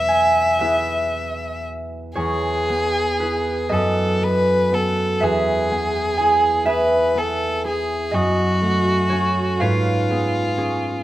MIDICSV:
0, 0, Header, 1, 3, 480
1, 0, Start_track
1, 0, Key_signature, 4, "major"
1, 0, Tempo, 1038062
1, 1005, Time_signature, 6, 3, 24, 8
1, 1488, Tempo, 1008403
1, 2448, Tempo, 969305
1, 5319, End_track
2, 0, Start_track
2, 0, Title_t, "Violin"
2, 0, Program_c, 0, 40
2, 0, Note_on_c, 0, 76, 52
2, 766, Note_off_c, 0, 76, 0
2, 1005, Note_on_c, 0, 68, 52
2, 1727, Note_on_c, 0, 69, 45
2, 1734, Note_off_c, 0, 68, 0
2, 1970, Note_on_c, 0, 71, 53
2, 1977, Note_off_c, 0, 69, 0
2, 2213, Note_on_c, 0, 69, 47
2, 2220, Note_off_c, 0, 71, 0
2, 2448, Note_on_c, 0, 68, 54
2, 2455, Note_off_c, 0, 69, 0
2, 3163, Note_off_c, 0, 68, 0
2, 3166, Note_on_c, 0, 71, 51
2, 3411, Note_on_c, 0, 69, 50
2, 3419, Note_off_c, 0, 71, 0
2, 3650, Note_off_c, 0, 69, 0
2, 3654, Note_on_c, 0, 68, 49
2, 3888, Note_on_c, 0, 66, 54
2, 3895, Note_off_c, 0, 68, 0
2, 4616, Note_on_c, 0, 65, 49
2, 4623, Note_off_c, 0, 66, 0
2, 5319, Note_off_c, 0, 65, 0
2, 5319, End_track
3, 0, Start_track
3, 0, Title_t, "Harp"
3, 0, Program_c, 1, 46
3, 0, Note_on_c, 1, 40, 36
3, 0, Note_on_c, 1, 59, 32
3, 39, Note_on_c, 1, 80, 57
3, 274, Note_on_c, 1, 76, 58
3, 275, Note_off_c, 1, 59, 0
3, 277, Note_on_c, 1, 59, 28
3, 282, Note_on_c, 1, 68, 42
3, 284, Note_on_c, 1, 71, 41
3, 287, Note_on_c, 1, 64, 28
3, 295, Note_off_c, 1, 68, 0
3, 297, Note_on_c, 1, 68, 28
3, 994, Note_off_c, 1, 68, 0
3, 995, Note_off_c, 1, 64, 0
3, 996, Note_on_c, 1, 73, 65
3, 998, Note_off_c, 1, 40, 0
3, 999, Note_on_c, 1, 64, 44
3, 1000, Note_on_c, 1, 68, 46
3, 1003, Note_on_c, 1, 40, 41
3, 1240, Note_off_c, 1, 59, 0
3, 1244, Note_off_c, 1, 68, 0
3, 1246, Note_on_c, 1, 59, 29
3, 1249, Note_on_c, 1, 68, 31
3, 1474, Note_off_c, 1, 71, 0
3, 1479, Note_on_c, 1, 71, 54
3, 1483, Note_off_c, 1, 64, 0
3, 1485, Note_off_c, 1, 68, 0
3, 1488, Note_on_c, 1, 64, 34
3, 1491, Note_on_c, 1, 68, 36
3, 1711, Note_off_c, 1, 71, 0
3, 1713, Note_on_c, 1, 75, 64
3, 1715, Note_on_c, 1, 69, 51
3, 1718, Note_on_c, 1, 71, 47
3, 1722, Note_on_c, 1, 42, 43
3, 1744, Note_off_c, 1, 76, 0
3, 1746, Note_off_c, 1, 80, 0
3, 1749, Note_off_c, 1, 40, 0
3, 1751, Note_off_c, 1, 64, 0
3, 1752, Note_off_c, 1, 68, 0
3, 1822, Note_off_c, 1, 73, 0
3, 1956, Note_off_c, 1, 59, 0
3, 1959, Note_off_c, 1, 69, 0
3, 1962, Note_on_c, 1, 59, 29
3, 1965, Note_on_c, 1, 69, 32
3, 2198, Note_off_c, 1, 59, 0
3, 2201, Note_off_c, 1, 69, 0
3, 2204, Note_on_c, 1, 59, 35
3, 2207, Note_on_c, 1, 69, 33
3, 2433, Note_on_c, 1, 76, 69
3, 2434, Note_off_c, 1, 71, 0
3, 2440, Note_on_c, 1, 71, 51
3, 2442, Note_on_c, 1, 40, 38
3, 2444, Note_on_c, 1, 68, 49
3, 2458, Note_off_c, 1, 75, 0
3, 2462, Note_off_c, 1, 42, 0
3, 2467, Note_off_c, 1, 69, 0
3, 2680, Note_off_c, 1, 59, 0
3, 2681, Note_off_c, 1, 68, 0
3, 2684, Note_on_c, 1, 59, 31
3, 2689, Note_on_c, 1, 68, 33
3, 2913, Note_on_c, 1, 80, 66
3, 2922, Note_off_c, 1, 68, 0
3, 2924, Note_on_c, 1, 64, 33
3, 2928, Note_on_c, 1, 68, 37
3, 3144, Note_off_c, 1, 76, 0
3, 3150, Note_off_c, 1, 71, 0
3, 3150, Note_on_c, 1, 76, 64
3, 3151, Note_off_c, 1, 68, 0
3, 3155, Note_on_c, 1, 68, 52
3, 3156, Note_off_c, 1, 64, 0
3, 3158, Note_on_c, 1, 71, 50
3, 3161, Note_on_c, 1, 64, 34
3, 3391, Note_off_c, 1, 59, 0
3, 3397, Note_on_c, 1, 59, 31
3, 3398, Note_off_c, 1, 68, 0
3, 3403, Note_on_c, 1, 68, 32
3, 3637, Note_off_c, 1, 64, 0
3, 3639, Note_off_c, 1, 68, 0
3, 3641, Note_on_c, 1, 64, 34
3, 3647, Note_on_c, 1, 68, 36
3, 3873, Note_on_c, 1, 75, 68
3, 3881, Note_on_c, 1, 42, 43
3, 3900, Note_off_c, 1, 80, 0
3, 3901, Note_off_c, 1, 76, 0
3, 3903, Note_off_c, 1, 71, 0
3, 3905, Note_off_c, 1, 59, 0
3, 3907, Note_off_c, 1, 40, 0
3, 3907, Note_off_c, 1, 64, 0
3, 3907, Note_off_c, 1, 68, 0
3, 4122, Note_on_c, 1, 69, 33
3, 4126, Note_on_c, 1, 57, 31
3, 4360, Note_on_c, 1, 73, 71
3, 4366, Note_off_c, 1, 69, 0
3, 4373, Note_on_c, 1, 61, 36
3, 4373, Note_on_c, 1, 69, 43
3, 4608, Note_off_c, 1, 73, 0
3, 4609, Note_on_c, 1, 77, 80
3, 4613, Note_on_c, 1, 71, 62
3, 4616, Note_on_c, 1, 44, 47
3, 4616, Note_on_c, 1, 73, 58
3, 4632, Note_off_c, 1, 42, 0
3, 4635, Note_off_c, 1, 57, 0
3, 4636, Note_off_c, 1, 69, 0
3, 4706, Note_off_c, 1, 75, 0
3, 4859, Note_on_c, 1, 59, 32
3, 4860, Note_on_c, 1, 68, 38
3, 5085, Note_off_c, 1, 61, 0
3, 5089, Note_off_c, 1, 68, 0
3, 5091, Note_on_c, 1, 61, 38
3, 5095, Note_on_c, 1, 68, 41
3, 5319, Note_off_c, 1, 44, 0
3, 5319, Note_off_c, 1, 59, 0
3, 5319, Note_off_c, 1, 61, 0
3, 5319, Note_off_c, 1, 68, 0
3, 5319, Note_off_c, 1, 71, 0
3, 5319, Note_off_c, 1, 73, 0
3, 5319, Note_off_c, 1, 77, 0
3, 5319, End_track
0, 0, End_of_file